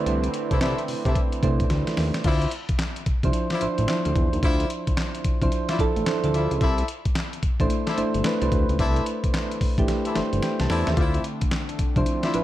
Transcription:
Already playing: analog synth pad D3 A3 C4 E4, synth keys A3 D4 E4 B4 C5 D5
0.06 analog synth bass C2, synth keys A3 D4 E4 C5, closed hi-hat
0.24 closed hi-hat
0.34 closed hi-hat
0.51 analog synth bass C2, horn section E4 A4 C5 D5 E5, kick, closed hi-hat
0.60 analog synth bass C3, horn section E4 A4 C5 D5 E5, snare, clap, closed hi-hat
0.78 closed hi-hat
0.88 analog synth bass C3, open hi-hat
1.05 analog synth bass C3, horn section E4 A4 C5 D5 E5, kick, closed hi-hat
1.15 kick, closed hi-hat
1.32 closed hi-hat
1.43 analog synth bass C2, synth keys A3 D4 E4 C5, kick, closed hi-hat
1.60 kick, closed hi-hat
1.70 analog synth bass D2, snare, closed hi-hat
1.87 snare, closed hi-hat
1.97 analog synth bass D#2, snare, open hi-hat
2.14 snare, closed hi-hat
2.24 analog synth bass D2, horn section E4 F4 C5 D5 E5, kick, closed hi-hat, crash
2.42 closed hi-hat
2.51 closed hi-hat
2.69 analog synth bass C2, kick, closed hi-hat
2.79 snare, clap, closed hi-hat
2.96 closed hi-hat
3.06 analog synth bass C2, kick, closed hi-hat
3.23 analog synth bass C2, synth keys F3 D4 E4 C5, kick, closed hi-hat
3.33 closed hi-hat
3.50 horn section E4 F4 C5 D5 E5, snare, closed hi-hat
3.61 analog synth bass A1, synth keys F3 D4 E4 C5, closed hi-hat
3.78 analog synth bass A1, closed hi-hat
3.88 synth keys F3 D4 E4 C5, snare, clap, closed hi-hat
4.05 analog synth bass D2, synth keys F3 D4 E4 C5, closed hi-hat
4.16 analog synth bass E2, kick, closed hi-hat
4.33 analog synth bass D#2, closed hi-hat
4.42 analog synth bass D2, horn section E4 F4 C5 D5 E5, kick, closed hi-hat
4.60 closed hi-hat
4.70 closed hi-hat
4.87 analog synth bass C2, kick, closed hi-hat
4.97 snare, clap, closed hi-hat
5.15 closed hi-hat
5.24 analog synth bass C2, kick, closed hi-hat
5.42 analog synth bass C2, synth keys F3 D4 E4 C5, kick, closed hi-hat
5.52 closed hi-hat
5.69 horn section E4 F4 C5 D5 E5, snare, closed hi-hat
5.79 analog synth bass A1, synth keys F3 D4 E4 A4, kick, closed hi-hat
5.96 analog synth bass A1, closed hi-hat
6.06 synth keys F3 D4 E4 C5, snare, clap, closed hi-hat
6.24 analog synth bass D2, synth keys F3 D4 E4 A4, closed hi-hat
6.33 analog synth bass D2, horn section E4 F4 C5 D5 E5, closed hi-hat
6.51 analog synth bass C#2, closed hi-hat
6.61 analog synth bass C2, horn section E4 A4 C5 D5 E5, kick, closed hi-hat
6.78 closed hi-hat
6.88 closed hi-hat
7.05 analog synth bass A1, kick, closed hi-hat
7.15 snare, clap, closed hi-hat
7.33 closed hi-hat
7.43 analog synth bass A1, kick, closed hi-hat
7.60 analog synth bass A1, synth keys A3 D4 E4 C5, kick, closed hi-hat
7.70 closed hi-hat
7.87 horn section E4 A4 C5 D5 E5, snare, closed hi-hat
7.97 analog synth bass G1, synth keys A3 D4 E4 C5, closed hi-hat
8.14 analog synth bass G1, closed hi-hat
8.24 synth keys A3 D4 E4 B4, snare, clap, closed hi-hat
8.41 analog synth bass C2, synth keys A3 D4 E4 C5, closed hi-hat
8.52 analog synth bass D2, kick, closed hi-hat
8.69 analog synth bass C#2, closed hi-hat
8.79 analog synth bass C2, horn section E4 A4 C5 D5 E5, kick, closed hi-hat
8.96 closed hi-hat
9.06 closed hi-hat
9.24 analog synth bass A1, kick, closed hi-hat
9.34 snare, clap, closed hi-hat
9.51 closed hi-hat
9.61 analog synth bass A1, kick, open hi-hat
9.78 analog synth bass A1, synth keys A3 D4 E4 G4, kick, closed hi-hat
9.88 snare, closed hi-hat
10.05 horn section E4 A4 C5 D5 E5, closed hi-hat
10.15 analog synth bass G1, synth keys A3 D4 E4 C5, snare, closed hi-hat
10.33 analog synth bass G1, closed hi-hat
10.43 synth keys G5, snare, closed hi-hat
10.60 analog synth bass C2, synth keys A5, snare, closed hi-hat
10.69 analog synth bass E2, horn section E4 A4 C5 D5 E5, snare, open hi-hat
10.87 analog synth bass D#2, synth keys E5, snare, closed hi-hat
10.97 analog synth bass D2, analog synth pad D3 A3 C4 D4, horn section E4 F4 C5 D5 E5, kick, closed hi-hat
11.14 closed hi-hat
11.24 closed hi-hat
11.41 analog synth bass C2, kick, closed hi-hat
11.51 snare, clap, closed hi-hat
11.69 closed hi-hat
11.79 analog synth bass C2, kick, closed hi-hat
11.96 analog synth bass C2, synth keys F3 D4 E4 C5, kick, closed hi-hat
12.06 closed hi-hat
12.23 horn section E4 F4 C5 D5 E5, snare, closed hi-hat
12.34 analog synth bass A1, synth keys F3 D4 E4 B4, closed hi-hat

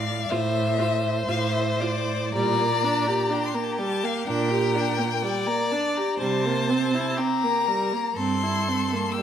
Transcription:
Already playing: cello A2, violin D5 F5
0.29 cello A2, viola F4, violin C5 E5
0.78 viola F4, violin C5
1.27 cello A2, viola F4, violin F5
1.53 violin E5
1.80 viola F4, violin D5
2.33 cello A#2, viola G3, violin D5 A#5
2.58 viola A#3
2.84 viola D4
3.07 viola G4
3.30 viola D4, violin G4
3.45 violin C6
3.54 viola A#3, violin A#5
3.64 violin A5
3.72 violin A#5
3.78 viola G3, violin A5
4.03 viola A#3, violin F5
4.27 cello A#2, viola D4, violin A#4 G5
4.50 viola G4
4.75 viola D4
4.99 viola A#3
5.22 viola G3, violin D5
5.47 viola A#3, violin A#5
5.71 viola D4, violin A5
5.97 viola G4, violin A#5
6.18 cello C3, viola G3, violin C5 A5
6.45 viola A#3
6.70 viola C4
6.95 viola E4
7.17 viola C4, violin G4 A#5
7.43 viola A#3
7.66 viola G3, violin A#4
7.93 viola A#3
8.15 cello G2, viola C4, violin A4 C6
8.43 viola E4
8.69 viola C4
8.93 viola A#3
9.12 violin G4 E6
9.18 viola G3

